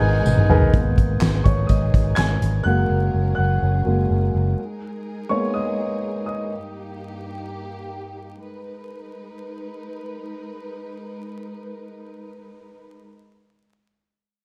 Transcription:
0.00 0.21 G#1 loud
0.00 0.45 G#2 medium
0.00 0.72 G#3 medium
0.00 0.72 B3 medium
0.00 0.44 D#4 medium
0.00 0.71 D#4 medium
0.00 0.44 G#4 medium
0.00 0.72 G#4 medium
0.00 0.45 A#4 medium
0.00 0.45 B4 medium
0.00 0.45 D#5 medium
0.00 0.72 G#5 medium
0.00 0.72 A#5 medium
0.00 0.45 G#6 medium
0.00 ride medium
0.25 0.45 G#1 loud
0.25 high tom medium
0.25 tambourine medium
0.37 mid tom medium
0.49 0.69 G#1 medium
0.49 0.72 D#4 medium
0.49 0.72 G#4 medium
0.49 0.72 A#4 medium
0.49 0.72 B4 medium
0.49 0.72 D#5 loud
0.49 mid tom loud
0.62 floor tom loud
0.73 0.93 G#1 loud
0.73 2.64 G#3 medium
0.73 1.06 G#3 soft
0.73 1.06 A#3 soft
0.73 1.06 B3 medium
0.73 2.63 D#4 medium
0.73 2.63 G#4 medium
0.73 4.54 A#4 medium
0.73 kick medium
0.73 closed hi-hat medium
0.98 1.17 G#1 medium
0.98 kick medium
0.98 closed hi-hat medium
1.21 1.41 G#1 medium
1.21 snare loud
1.21 clap medium
1.21 closed hi-hat medium
1.44 1.65 G#1 medium
1.44 1.68 C#5 medium
1.44 1.70 C#6 medium
1.44 kick medium
1.44 closed hi-hat medium
1.67 1.89 G#1 medium
1.67 2.14 D#5 medium
1.67 2.18 D#6 medium
1.67 kick medium
1.67 closed hi-hat medium
1.94 2.14 G#1 medium
1.94 kick medium
1.94 closed hi-hat medium
2.15 2.37 G#1 medium
2.15 2.63 G#5 medium
2.15 2.61 G#6 medium
2.15 snare medium
2.15 clap medium
2.15 closed hi-hat medium
2.42 2.61 G#1 medium
2.42 closed hi-hat medium
2.63 2.85 F#1 medium
2.63 2.97 F#3 medium
2.63 4.56 F#3 medium
2.63 2.98 G#3 soft
2.63 2.98 A#3 medium
2.63 4.56 C#4 medium
2.63 4.56 G#4 medium
2.63 3.34 F#5 medium
2.63 3.33 F#6 medium
2.90 3.09 F#1 medium
3.14 3.34 F#1 medium
3.35 3.58 F#1 medium
3.35 4.30 F#5 medium
3.35 4.29 F#6 medium
3.62 3.82 F#1 loud
3.85 4.06 F#1 medium
3.85 4.07 F#3 soft
3.85 4.07 G#3 soft
3.85 4.08 A#3 soft
4.11 4.30 F#1 medium
4.34 4.54 F#1 medium
4.58 6.49 G#3 medium
4.58 8.39 D#4 medium
4.58 6.49 G#4 medium
4.58 6.49 A#4 medium
5.29 5.99 G#3 soft
5.29 5.99 A#3 soft
5.29 5.99 B3 soft
5.29 5.53 C#5 medium
5.29 5.52 C#6 medium
5.54 6.23 D#5 medium
5.54 6.25 D#6 medium
6.26 6.49 D#5 medium
6.26 6.49 D#6 medium
6.51 8.41 G2 medium
6.51 8.41 A#3 medium
6.51 8.41 G4 medium
8.43 13.04 G#3 medium
8.43 13.04 D#4 soft
8.43 13.04 A#4 soft
8.43 13.04 B4 medium

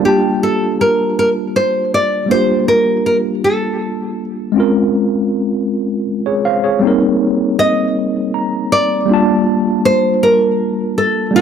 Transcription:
0.00 2.24 G3 medium
0.00 2.25 A#3 medium
0.00 2.26 D4 medium
0.00 0.20 G4 medium
0.05 2.27 F4 medium
0.05 0.39 G4 medium
0.05 2.28 A5 medium
0.43 0.80 A4 medium
0.81 1.18 A#4 medium
1.19 1.29 A#4 medium
1.56 1.94 C5 medium
1.94 2.28 D5 medium
2.26 4.50 G3 medium
2.26 4.51 A#3 medium
2.26 4.52 D4 medium
2.31 4.53 F4 medium
2.31 4.54 G4 medium
2.31 2.68 C5 loud
2.68 3.05 A#4 medium
3.06 3.16 A#4 medium
3.44 4.24 A4 medium
4.52 6.76 G#3 medium
4.52 6.77 C4 medium
4.52 6.78 C#4 medium
4.58 6.79 F4 medium
4.58 6.06 A#4 medium
6.26 6.44 G#4 medium
6.26 6.43 C#5 medium
6.45 6.63 C5 medium
6.45 6.62 F5 medium
6.64 6.99 G#4 medium
6.64 6.99 C#5 medium
6.79 9.03 G3 medium
6.79 9.05 A#3 medium
6.79 9.04 C4 medium
6.85 9.06 D#4 medium
6.85 9.07 A#4 medium
7.59 8.72 D#5 loud
8.34 9.05 A#5 medium
8.72 9.43 D5 loud
9.05 11.29 G3 medium
9.05 11.30 A#3 medium
9.09 11.31 D4 medium
9.09 11.32 F4 medium
9.14 11.33 A5 medium
9.85 10.23 C5 medium
10.23 10.97 A#4 loud
10.98 11.35 A4 medium
11.31 11.41 G3 medium
11.31 11.41 A#3 medium
11.31 11.41 D4 medium
11.36 11.41 F4 medium
11.36 11.41 G4 loud

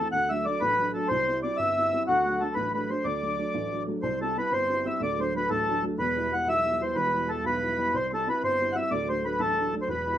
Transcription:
0.12 0.45 D2 medium
0.12 0.30 F#5 loud
0.30 0.45 F#3 soft
0.30 0.45 A3 soft
0.30 0.45 D4 soft
0.30 0.45 E5 medium
0.45 0.72 F#3 soft
0.45 0.72 A3 soft
0.45 0.73 D4 medium
0.45 0.61 D5 medium
0.61 0.93 A1 medium
0.61 0.92 B4 loud
0.79 0.93 F#3 soft
0.79 0.93 A3 soft
0.79 0.94 D4 medium
0.94 1.06 F#3 medium
0.94 1.07 A3 soft
0.94 1.07 D4 medium
0.94 1.08 A4 medium
1.08 1.42 C2 medium
1.08 1.40 C5 loud
1.28 1.42 G3 soft
1.28 1.42 C4 soft
1.28 1.42 E4 medium
1.43 1.70 G3 soft
1.43 1.70 C4 soft
1.43 1.70 E4 medium
1.43 1.57 D5 medium
1.57 1.91 G1 medium
1.57 2.03 E5 loud
1.77 1.91 G3 soft
1.77 1.92 C4 soft
1.77 1.92 E4 medium
1.93 2.04 G3 medium
1.93 2.05 C4 medium
1.93 2.05 E4 medium
2.08 2.40 D2 medium
2.08 2.42 F#4 medium
2.26 2.39 F#3 soft
2.26 2.40 A3 soft
2.26 2.40 D4 medium
2.40 2.67 F#3 soft
2.40 2.68 A3 soft
2.40 2.68 D4 medium
2.40 2.55 A4 medium
2.55 2.89 A1 medium
2.55 2.72 B4 medium
2.74 2.88 F#3 soft
2.74 2.88 A3 soft
2.74 2.89 D4 medium
2.74 2.90 B4 medium
2.89 3.02 F#3 medium
2.89 3.02 A3 medium
2.89 3.02 D4 medium
2.89 3.06 C5 medium
3.04 3.37 D2 medium
3.04 3.83 D5 medium
3.22 3.37 F#3 soft
3.22 3.37 A3 soft
3.22 3.37 D4 medium
3.38 3.65 F#3 soft
3.38 3.65 A3 soft
3.38 3.65 D4 medium
3.54 3.86 A1 medium
3.71 3.85 F#3 soft
3.71 3.86 A3 soft
3.71 3.86 D4 soft
3.87 3.99 F#3 medium
3.87 4.00 A3 soft
3.87 4.00 D4 medium
4.02 4.35 C2 medium
4.02 4.19 C5 medium
4.21 4.35 G3 soft
4.21 4.36 C4 soft
4.21 4.36 E4 soft
4.21 4.37 A4 medium
4.36 4.63 G3 soft
4.36 4.63 C4 soft
4.36 4.64 E4 medium
4.36 4.53 B4 medium
4.51 4.84 G1 medium
4.51 4.87 C5 loud
4.69 4.83 G3 medium
4.69 4.83 C4 soft
4.69 4.84 E4 medium
4.84 4.97 G3 medium
4.84 4.97 C4 soft
4.84 4.97 E4 medium
4.84 5.02 E5 medium
5.00 5.94 D1 medium
5.00 5.33 D2 medium
5.00 5.20 D5 loud
5.19 5.33 F#3 soft
5.19 5.33 A3 soft
5.19 5.33 D4 medium
5.19 5.34 C5 medium
5.34 5.61 F#3 soft
5.34 5.61 A3 soft
5.34 5.61 D4 medium
5.34 5.50 B4 loud
5.50 5.82 A1 medium
5.50 5.84 A4 loud
5.67 5.81 F#3 medium
5.67 5.81 A3 soft
5.67 5.81 D4 medium
5.82 5.95 F#3 medium
5.82 5.95 A3 medium
5.82 5.95 D4 medium
5.98 6.92 E1 medium
5.98 6.31 E2 medium
5.98 6.33 B4 loud
6.16 6.30 G3 medium
6.16 6.30 B3 soft
6.16 6.30 E4 medium
6.31 6.58 G3 medium
6.31 6.58 B3 soft
6.31 6.58 E4 medium
6.31 6.48 F#5 medium
6.46 6.79 B1 medium
6.46 6.82 E5 loud
6.65 6.78 G3 medium
6.65 6.79 B3 soft
6.65 6.79 E4 soft
6.80 7.07 G3 medium
6.80 7.07 B3 medium
6.80 7.07 E4 medium
6.80 6.97 C5 medium
6.95 7.89 E1 medium
6.95 7.28 E2 medium
6.95 7.30 B4 loud
7.13 7.27 G3 medium
7.13 7.27 B3 soft
7.13 7.27 E4 soft
7.29 7.56 G3 soft
7.29 7.56 B3 soft
7.29 7.56 E4 soft
7.29 7.45 A4 medium
7.44 7.77 B1 medium
7.44 7.96 B4 loud
7.62 7.76 G3 soft
7.62 7.77 B3 soft
7.62 7.77 E4 medium
7.78 7.90 G3 medium
7.78 7.90 B3 medium
7.78 7.90 E4 medium
7.94 8.26 C2 medium
7.94 8.11 C5 loud
8.11 8.25 G3 soft
8.11 8.25 C4 soft
8.11 8.26 E4 medium
8.11 8.28 A4 medium
8.27 8.53 G3 soft
8.27 8.54 C4 soft
8.27 8.54 E4 medium
8.27 8.42 B4 medium
8.43 8.75 G1 medium
8.43 8.74 C5 loud
8.61 8.74 G3 soft
8.61 8.74 C4 soft
8.61 8.74 E4 medium
8.73 8.88 G3 medium
8.73 8.88 C4 soft
8.73 8.88 E4 medium
8.73 8.92 E5 medium
8.73 8.76 F#5 medium
8.91 9.85 D1 medium
8.91 9.23 D2 medium
8.91 9.08 D5 loud
9.08 9.22 F#3 medium
9.08 9.23 A3 soft
9.08 9.23 D4 medium
9.08 9.25 C5 medium
9.23 9.51 F#3 soft
9.23 9.51 A3 soft
9.23 9.51 D4 soft
9.23 9.41 B4 medium
9.39 9.72 A1 medium
9.39 9.75 A4 loud
9.57 9.72 F#3 soft
9.57 9.72 A3 soft
9.57 9.72 D4 medium
9.73 9.85 F#3 medium
9.73 9.86 A3 medium
9.73 9.86 D4 medium
9.82 9.89 C5 medium
9.88 10.18 E1 medium
9.88 10.18 E2 medium
9.88 10.18 B4 medium
10.06 10.18 G3 medium
10.06 10.18 B3 soft
10.06 10.18 E4 medium

